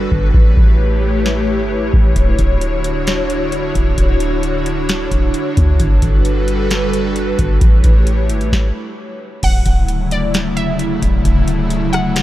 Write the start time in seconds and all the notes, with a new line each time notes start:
Already playing: G3 D4 F#4 A4 B4
0.12 G1, kick
0.34 A1 A3 E4 G4 C#5, kick
0.57 A1, kick
1.26 snare
1.59 G1
1.76 A1
1.93 A1, kick
2.16 D1 D3 D4 F#4, kick, closed hi-hat
2.39 D1, kick, closed hi-hat
2.61 closed hi-hat
2.84 closed hi-hat
3.07 snare, closed hi-hat
3.30 closed hi-hat
3.52 closed hi-hat
3.75 D1, kick, closed hi-hat
3.98 D1, kick, closed hi-hat
4.20 closed hi-hat
4.43 closed hi-hat
4.66 closed hi-hat
4.89 snare, closed hi-hat
5.11 D1, kick, closed hi-hat
5.34 closed hi-hat
5.57 D2, kick, closed hi-hat
5.80 G1 G3 F#4 A4 B4, kick, closed hi-hat
6.02 G1, kick, closed hi-hat
6.25 closed hi-hat
6.48 closed hi-hat
6.71 snare, closed hi-hat
6.93 closed hi-hat
7.16 closed hi-hat
7.39 G1, kick, closed hi-hat
7.61 A1 A3 E4 G4 C#5, kick, closed hi-hat
7.84 A1, kick, closed hi-hat
8.07 closed hi-hat
8.29 G1, closed hi-hat
8.41 A1, closed hi-hat
8.52 kick, snare
9.43 D1 C#3 D3 F#3 A3 E4 F#5, kick, closed hi-hat, crash
9.66 D1, kick, closed hi-hat
9.88 closed hi-hat
10.11 D5, closed hi-hat
10.34 snare, closed hi-hat
10.57 E5, closed hi-hat
10.79 closed hi-hat
11.02 D1, kick, closed hi-hat
11.25 D1, kick, closed hi-hat
11.48 closed hi-hat
11.70 closed hi-hat
11.93 F#5, cross-stick, closed hi-hat
12.16 snare, closed hi-hat